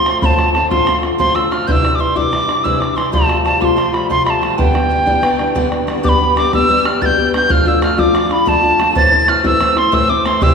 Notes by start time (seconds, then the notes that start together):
Already playing: C6
0.06 F3 A3 C4 F4, bodhran
0.22 D2 A2 D3 A3 C4 F4 A5 B5, bodhran
0.38 D3 A3 C4 F4, bodhran
0.54 D3 A3 C4 F4 A5, bodhran
0.70 D2 A2 D3 A3 C4 F4 C6, bodhran
0.86 D3 A3 C4 F4, bodhran
1.02 D3 A3 C4 F4, bodhran
1.18 D2 A2 D3 A3 C4 F4 C6, bodhran
1.35 D3 A3 C4 F4 E6, bodhran
1.51 D3 A3 C4 F4 F6, bodhran
1.67 C3 E3 G3 D4 E4 G6, bodhran
1.71 E6
1.83 G3 D4 E4, bodhran
1.95 E3 D6
1.99 G3 D4 E4 C6
2.15 C3 E3 G3 D4 E4 D6, bodhran
2.31 E3 G3 D4 E4, bodhran
2.48 G3 D4 E4, bodhran
2.64 C3 E3 G3 D4 E4 E6, bodhran
2.80 G3 D4 E4 D6, bodhran
2.96 E3 G3 D4 E4 C6, bodhran
3.12 F2 C3 F3 G3 A3 F4 A5, bodhran
3.28 F3 G3 A3 F4, bodhran
3.45 F3 G3 A3 F4 A5, bodhran
3.61 F2 C3 F3 G3 A3 F4 D6, bodhran
3.65 C6
3.76 F3 G3 A3 F4, bodhran
3.93 F3 G3 A3 F4 B5, bodhran
4.09 F2 C3 F3 G3 A3 F4 C6, bodhran
4.25 F3 G3 A3 F4 B5, bodhran
4.30 A5
4.41 F3 G3 A3 F4, bodhran
4.58 G2 D3 E3 G3 B3 D4 G5, bodhran
4.73 E3 G3 B3 D4, bodhran
4.89 E3 G3 B3 D4
5.06 G2 D3 E3 G3 B3 D4, bodhran
5.21 E3 G3 B3 D4, bodhran
5.38 E3 G3 B3 D4, bodhran
5.55 G2 D3 E3 G3 B3 D4, bodhran
5.71 E3 G3 B3 D4, bodhran
5.87 E3 G3 B3 D4, bodhran
6.03 G3 B3 D4 G4 D6, bodhran
6.09 B5
6.19 B3 D4 G4
6.36 G3 B3 D4 G4 D6, bodhran
6.53 G3 B3 D4 G4 E6, bodhran
6.68 G3 B3 D4 G4
6.85 B3 D4 G4 F6, bodhran
7.01 G3 B3 D4 G4 A6, bodhran
7.05 G6
7.17 B3 D4 G4, bodhran
7.33 G3 B3 D4 G4 G6, bodhran
7.49 F3 A3 D4 F4 F6, bodhran
7.66 A3 D4 F4 E6
7.81 F3 A3 D4 F4 F6, bodhran
7.98 F3 A3 D4 F4 D6, bodhran
8.14 F3 A3 D4 F4, bodhran
8.30 A3 D4 F4 B5, bodhran
8.46 F3 A3 D4 F4 A5, bodhran
8.63 A3 D4 F4, bodhran
8.79 F3 A3 D4 F4, bodhran
8.95 A2 E3 A3 C4 E4 A6, bodhran
9.11 A3 C4 E4
9.27 E3 A3 C4 E4 F6, bodhran
9.44 A2 E3 A3 C4 E4 E6, bodhran
9.60 E3 A3 C4 E4, bodhran
9.76 A3 C4 E4 C6, bodhran
9.92 A2 E3 A3 C4 E4 E6, bodhran
10.08 A3 C4 E4 D6, bodhran
10.24 E3 A3 C4 E4 C6, bodhran
10.41 C3 E3 G3 C4 G4 E6, bodhran